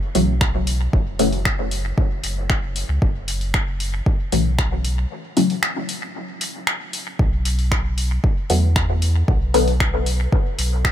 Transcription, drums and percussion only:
0.15 open hi-hat
0.41 finger snap, kick
0.67 open hi-hat
0.93 kick
1.19 open hi-hat
1.32 open hi-hat
1.45 finger snap, kick
1.71 open hi-hat
1.98 kick
2.24 open hi-hat
2.50 finger snap, kick
2.76 open hi-hat
3.02 kick
3.28 open hi-hat
3.41 open hi-hat
3.54 finger snap, kick
3.80 open hi-hat
4.06 kick
4.32 open hi-hat
4.58 finger snap, kick
4.85 open hi-hat
5.37 open hi-hat
5.50 open hi-hat
5.63 finger snap
5.89 open hi-hat
6.41 open hi-hat
6.67 finger snap
6.93 open hi-hat
7.19 kick
7.45 open hi-hat
7.59 open hi-hat
7.72 finger snap, kick
7.98 open hi-hat
8.24 kick
8.50 open hi-hat
8.76 finger snap, kick
9.02 open hi-hat
9.28 kick
9.54 open hi-hat
9.68 open hi-hat
9.80 finger snap, kick
10.06 open hi-hat
10.32 kick
10.59 open hi-hat
10.85 finger snap, kick

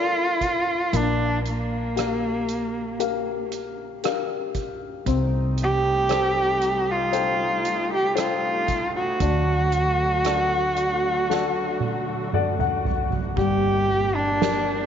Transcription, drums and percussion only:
0.41 kick, closed hi-hat
0.93 kick, closed hi-hat
1.46 closed hi-hat
1.97 cross-stick, closed hi-hat
2.49 closed hi-hat
3.00 closed hi-hat
3.52 closed hi-hat
4.04 cross-stick, closed hi-hat
4.55 kick, closed hi-hat
5.06 kick, closed hi-hat
5.58 closed hi-hat
6.09 cross-stick, closed hi-hat
6.62 closed hi-hat
7.13 closed hi-hat
7.65 closed hi-hat
8.17 cross-stick, closed hi-hat
8.68 kick, closed hi-hat
9.20 kick, closed hi-hat
9.72 closed hi-hat
10.25 cross-stick, closed hi-hat
10.77 closed hi-hat
11.30 snare
11.80 high tom
12.33 mid tom
12.59 mid tom
12.85 floor tom
13.11 floor tom
13.36 kick, ride
13.89 ride
14.40 snare, ride

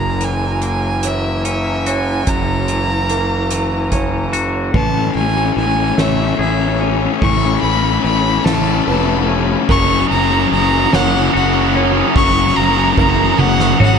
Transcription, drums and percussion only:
0.21 closed hi-hat
0.62 closed hi-hat
1.03 closed hi-hat
1.45 closed hi-hat
1.86 closed hi-hat
2.27 kick, closed hi-hat
2.68 closed hi-hat
3.09 closed hi-hat
3.51 closed hi-hat
3.92 kick, closed hi-hat
4.33 closed hi-hat
4.74 kick, ride
5.15 ride
5.57 ride
5.98 snare, ride
6.40 ride
6.81 ride
7.22 kick, ride
7.63 ride
8.04 ride
8.46 snare, ride
8.87 ride
9.28 ride
9.68 kick, crash
10.10 ride
10.52 ride
10.93 snare, ride
11.35 ride
11.75 ride
12.16 kick
12.98 kick
13.38 high tom
13.59 snare
13.80 mid tom

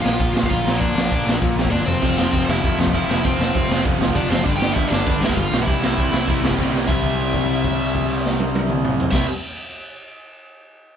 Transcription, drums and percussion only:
0.06 snare
0.19 kick, ride
0.36 snare
0.43 kick
0.51 kick, ride
0.68 snare
0.81 kick, ride
0.98 snare
1.12 kick, ride
1.29 snare
1.42 kick, ride
1.59 snare
1.65 kick
1.73 kick, snare
1.88 floor tom
2.02 kick, ride, crash
2.18 snare
2.33 kick, ride
2.50 snare
2.64 kick, ride
2.81 snare
2.87 kick
2.94 kick, ride
3.11 snare
3.24 kick, ride
3.41 snare
3.55 kick, ride
3.72 snare
3.85 kick, ride
4.02 snare
4.08 kick
4.16 kick, ride
4.32 snare
4.45 kick, ride
4.62 snare
4.76 kick, ride
4.92 snare
5.07 kick, ride
5.23 snare
5.29 kick
5.37 kick, ride
5.54 snare
5.68 kick, ride
5.84 snare
5.97 kick, ride
6.14 snare
6.28 kick, ride
6.45 snare
6.51 kick
6.59 kick, snare
6.76 snare
6.89 kick, crash
7.04 kick, crash
7.19 crash
7.34 kick, crash
7.50 crash
7.64 kick, crash
7.81 crash
7.95 kick, crash
8.10 crash
8.26 snare
8.40 high tom
8.55 high tom
8.69 mid tom
8.85 mid tom
9.00 floor tom
9.12 kick, snare, crash

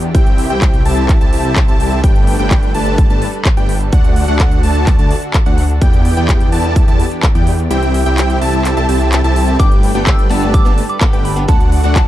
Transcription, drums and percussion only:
0.03 closed hi-hat
0.15 kick, closed hi-hat
0.26 closed hi-hat
0.38 open hi-hat
0.62 kick, clap, closed hi-hat
0.74 closed hi-hat
0.85 open hi-hat
0.97 closed hi-hat
1.09 kick, clap, closed hi-hat
1.21 closed hi-hat
1.33 open hi-hat
1.45 closed hi-hat
1.56 kick, clap, closed hi-hat
1.68 closed hi-hat
1.80 open hi-hat
1.92 closed hi-hat
2.04 kick, closed hi-hat
2.16 closed hi-hat
2.27 open hi-hat
2.39 closed hi-hat
2.51 kick, clap, closed hi-hat
2.63 closed hi-hat
2.74 open hi-hat
2.86 closed hi-hat
2.98 kick, closed hi-hat
3.10 closed hi-hat
3.22 open hi-hat
3.33 closed hi-hat
3.45 kick, clap, closed hi-hat
3.57 closed hi-hat
3.69 open hi-hat
3.81 closed hi-hat
3.92 kick, closed hi-hat
4.04 closed hi-hat
4.16 open hi-hat
4.28 closed hi-hat
4.39 kick, clap, closed hi-hat
4.51 closed hi-hat
4.63 open hi-hat
4.75 closed hi-hat
4.87 kick, clap, closed hi-hat
4.99 closed hi-hat
5.11 open hi-hat
5.22 closed hi-hat
5.34 kick, clap, closed hi-hat
5.46 closed hi-hat
5.58 open hi-hat
5.70 closed hi-hat
5.82 kick, closed hi-hat
5.93 closed hi-hat
6.05 open hi-hat
6.17 closed hi-hat
6.28 kick, clap, closed hi-hat
6.40 closed hi-hat
6.52 open hi-hat
6.64 closed hi-hat
6.76 kick, closed hi-hat
6.88 closed hi-hat
7.00 open hi-hat
7.11 closed hi-hat
7.23 kick, clap, closed hi-hat
7.35 closed hi-hat
7.47 open hi-hat
7.59 closed hi-hat
7.71 closed hi-hat
7.83 closed hi-hat
7.94 open hi-hat
8.06 closed hi-hat
8.18 clap, closed hi-hat
8.30 closed hi-hat
8.42 open hi-hat
8.65 clap, closed hi-hat
8.77 closed hi-hat
8.89 open hi-hat
9.01 closed hi-hat
9.12 clap, closed hi-hat
9.24 closed hi-hat
9.36 open hi-hat
9.48 closed hi-hat
9.60 kick, closed hi-hat
9.72 closed hi-hat
9.83 open hi-hat
10.07 kick, clap, closed hi-hat
10.19 closed hi-hat
10.31 open hi-hat
10.42 closed hi-hat
10.54 kick, closed hi-hat
10.66 closed hi-hat
10.78 open hi-hat
10.90 closed hi-hat
11.01 kick, clap, closed hi-hat
11.13 closed hi-hat
11.25 open hi-hat
11.37 closed hi-hat
11.49 kick, closed hi-hat
11.60 closed hi-hat
11.72 open hi-hat
11.84 closed hi-hat
11.96 kick, clap, closed hi-hat

